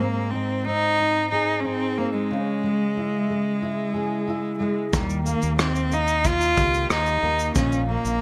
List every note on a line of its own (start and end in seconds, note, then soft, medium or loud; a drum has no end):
0.00 2.30 G#2 medium
0.00 0.32 A#3 medium
0.00 0.65 C4 medium
0.31 0.67 C4 medium
0.31 0.98 D#4 medium
0.65 1.97 C4 soft
0.65 1.30 D#4 loud
0.99 1.63 D#4 medium
1.31 1.62 D#4 medium
1.31 3.94 G#4 medium
1.60 1.67 C#4 medium
1.64 1.99 C4 medium
1.64 2.37 D#4 medium
1.98 2.12 A#3 medium
1.98 2.37 C4 medium
2.13 4.55 G#3 medium
2.31 4.93 C#3 medium
2.63 3.29 G#3 soft
2.97 3.61 E4 soft
3.30 4.59 G#3 soft
3.62 4.26 E4 medium
3.94 4.99 G#4 medium
4.28 5.00 E4 medium
4.58 4.90 G#3 medium
4.58 4.99 G#3 medium
4.92 5.34 D#2 medium
4.92 7.55 D#3 medium
4.92 5.24 G3 medium
4.92 kick loud
4.92 shaker medium
5.10 shaker soft
5.26 5.56 A#3 medium
5.26 5.90 A#3 medium
5.26 shaker soft
5.42 6.54 D#2 medium
5.42 shaker soft
5.58 5.95 C4 medium
5.58 6.23 D#4 soft
5.58 cross-stick medium
5.58 shaker medium
5.75 shaker soft
5.91 7.22 A#3 soft
5.91 6.29 D#4 medium
5.91 shaker soft
6.08 shaker soft
6.24 6.88 D#4 soft
6.24 6.91 F4 loud
6.24 kick medium
6.24 shaker medium
6.41 shaker soft
6.57 6.84 C#2 medium
6.57 7.62 G4 medium
6.57 kick medium
6.57 shaker soft
6.74 shaker soft
6.89 7.17 D#2 medium
6.89 7.62 D#4 medium
6.89 7.53 D#4 medium
6.89 cross-stick medium
6.89 shaker medium
7.06 shaker soft
7.22 7.50 D#2 medium
7.22 7.88 A#3 medium
7.39 shaker soft
7.55 7.96 A#1 medium
7.55 8.21 A#2 medium
7.55 7.86 C#4 medium
7.55 kick loud
7.55 shaker medium
7.72 shaker soft
7.88 8.21 A#3 soft
7.88 8.21 A#3 medium
8.05 8.21 A#1 medium
8.05 shaker soft